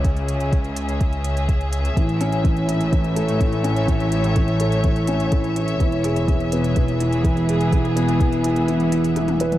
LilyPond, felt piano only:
\new Staff \with { instrumentName = "Felt piano" } { \clef bass \time 4/4 \key a \major \tempo 4 = 125 r1 | e8 cis'8 e8 e'8 e8 a'8 e8 cis'8 | e8 e'8 e8 a'8 e8 cis'8 e8 e'8 | e8 gis'8 e8 b8 e8 e'8 e8 gis'8 |
e8 b8 e8 e'8 e8 e'8 e8 b'8 | }